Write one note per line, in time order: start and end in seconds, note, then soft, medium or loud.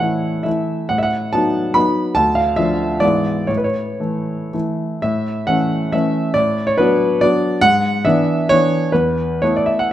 0.00 0.49 A2 soft
0.00 0.41 E3 soft
0.00 0.42 A3 soft
0.00 0.42 E4 soft
0.00 0.49 C#5 medium
0.00 0.45 F#5 medium
0.43 0.86 E3 soft
0.43 0.86 A3 soft
0.43 0.87 E4 soft
0.43 0.89 E5 medium
0.89 1.32 A2 soft
0.89 0.97 F#5 medium
0.98 1.05 E5 medium
1.03 1.33 F#5 medium
1.33 1.71 F#3 soft
1.33 1.72 B3 soft
1.33 1.72 D#4 soft
1.33 1.75 A5 medium
1.74 2.12 F#3 soft
1.74 2.12 B3 soft
1.74 2.13 D#4 soft
1.74 2.15 B5 medium
2.15 2.56 D2 medium
2.15 2.36 A5 loud
2.35 2.57 F5 medium
2.56 2.98 F3 soft
2.56 2.98 A3 soft
2.56 2.99 D4 soft
2.56 3.01 E5 medium
3.00 3.47 G#2 medium
3.00 3.44 E3 soft
3.00 3.45 B3 soft
3.00 3.45 E4 soft
3.00 3.48 D5 medium
3.47 3.99 A2 soft
3.47 3.56 C#5 medium
3.57 3.65 B4 medium
3.64 4.53 C#5 medium
4.00 4.49 E3 soft
4.00 4.50 A3 soft
4.00 4.50 E4 soft
4.53 4.99 E3 soft
4.53 5.00 A3 soft
4.53 5.00 E4 soft
5.02 5.47 A2 medium
5.02 5.47 E5 medium
5.47 5.90 E3 soft
5.47 5.90 A3 soft
5.47 5.90 C#4 soft
5.47 5.93 F#5 medium
5.92 6.32 E3 soft
5.92 6.32 A3 soft
5.92 6.33 C#4 soft
5.92 6.35 E5 medium
6.34 6.76 A2 medium
6.34 6.66 D5 medium
6.67 6.78 C#5 medium
6.78 7.18 F#3 medium
6.78 7.18 B3 medium
6.78 7.18 D4 medium
6.78 7.21 B4 medium
7.21 7.58 F#3 soft
7.21 7.58 B3 soft
7.21 7.59 D4 medium
7.21 7.61 D5 medium
7.61 8.04 G#2 medium
7.61 8.04 F#5 loud
8.05 8.46 E3 medium
8.05 8.46 B3 medium
8.05 8.46 D4 medium
8.05 8.49 E5 medium
8.49 8.90 E3 medium
8.49 8.90 B3 soft
8.49 8.91 D4 medium
8.49 8.93 C#5 loud
8.92 9.41 E2 medium
8.92 9.42 B4 medium
9.42 9.88 A3 soft
9.42 9.88 B3 soft
9.42 9.88 E4 soft
9.42 9.55 C#5 medium
9.56 9.68 D5 medium
9.66 9.79 E5 medium
9.79 9.91 F#5 medium